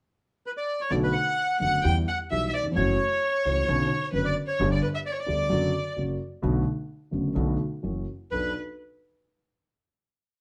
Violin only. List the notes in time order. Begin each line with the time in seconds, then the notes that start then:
0.92 D5
1.04 B4
1.16 F#5
1.62 F#5
1.86 G5
2.08 F#5
2.31 E5
2.49 E5
2.55 D5
2.77 C#5
4.13 B4
4.26 D5
4.48 C#5
4.73 D5
4.83 B4
4.95 E5
5.07 D5
5.14 C#5
5.24 D5
8.32 B4